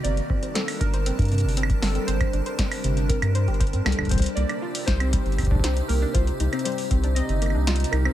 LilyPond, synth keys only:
\new Staff \with { instrumentName = "Synth keys" } { \time 4/4 \key c \dorian \tempo 4 = 118 d''4 a'8 bes'2 a'8 | c''2 bes'4. a'8 | c''8 d''4 c''2 bes'8 | c''4 c''4 ees''4. bes'8 | }